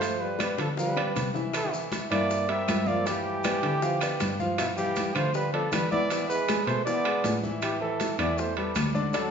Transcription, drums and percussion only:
0.01 high bongo, high conga, high timbale, maracas
0.20 high bongo, high conga
0.39 high bongo, high conga, high timbale, claves, maracas
0.58 high bongo, high conga, high timbale, maracas
0.77 high bongo, high conga, maracas
0.96 low bongo, high conga, high timbale, claves
1.16 low bongo, high conga, high timbale, maracas
1.34 low bongo, maracas
1.54 high bongo, high conga, high timbale, claves, maracas
1.73 high conga, maracas
1.92 high bongo, high conga, high timbale, maracas
2.11 high conga, high timbale, claves, maracas
2.31 high bongo, high conga, maracas
2.49 high conga, high timbale
2.68 high bongo, low bongo, high conga, high timbale, low timbale, claves, maracas
2.87 high conga, maracas
3.06 high bongo, high conga, high timbale, maracas
3.26 high bongo, high conga
3.44 high bongo, high conga, high timbale, claves, maracas
3.63 high conga, high timbale, maracas
3.82 high bongo, high conga, maracas
4.01 high bongo, high conga, high timbale, claves, maracas
4.20 high bongo, low bongo, high conga, high timbale, maracas
4.40 high bongo, high conga, maracas
4.58 high bongo, high conga, high timbale, claves, maracas
4.78 high conga, maracas
4.96 high bongo, high conga, high timbale, maracas
5.15 high conga, high timbale, claves, maracas
5.34 high bongo, high conga, maracas
5.54 high conga, high timbale
5.72 high bongo, low bongo, high conga, high timbale, claves, maracas
5.92 high conga, maracas
6.10 high bongo, high conga, high timbale, maracas
6.30 high bongo, high conga, maracas
6.48 high bongo, high conga, high timbale, claves, maracas
6.67 high conga, high timbale, maracas
6.87 high bongo, high conga, maracas
7.05 high bongo, high conga, high timbale, claves
7.24 high bongo, low bongo, high conga, high timbale, low timbale, maracas
7.43 high bongo, high conga, maracas
7.62 high bongo, high conga, high timbale, claves, maracas
7.82 high conga
8.00 high bongo, high conga, high timbale, maracas
8.19 high conga, high timbale, claves, maracas
8.38 high bongo, high conga, maracas
8.57 high conga, high timbale
8.75 high bongo, low bongo, high conga, high timbale, claves, maracas
8.95 high conga, maracas
9.13 high bongo, high conga, high timbale, maracas

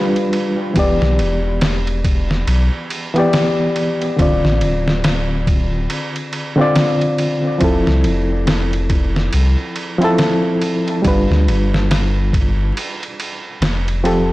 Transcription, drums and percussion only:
0.16 ride
0.33 ride
0.76 kick, ride
1.02 snare
1.19 ride
1.61 snare, ride
1.87 ride
2.04 kick, ride
2.31 snare
2.47 ride
2.90 ride
3.16 ride
3.33 snare, ride
3.76 ride
4.02 ride
4.19 kick, ride
4.45 snare
4.61 ride
4.88 snare
5.04 snare, ride
5.47 kick, ride
5.90 ride
6.16 ride
6.33 ride
6.76 snare, ride
7.01 ride
7.18 ride
7.61 kick, ride
7.87 snare
8.04 ride
8.47 snare, ride
8.73 ride
8.90 kick, ride
9.16 snare
9.33 ride
9.76 ride
10.02 ride
10.18 snare, ride
10.61 ride
10.88 ride
11.04 kick, ride
11.32 snare
11.48 ride
11.74 snare
11.91 snare, ride
12.33 kick, ride
12.77 ride
13.03 ride
13.20 ride
13.62 snare, ride
13.88 ride
14.05 ride

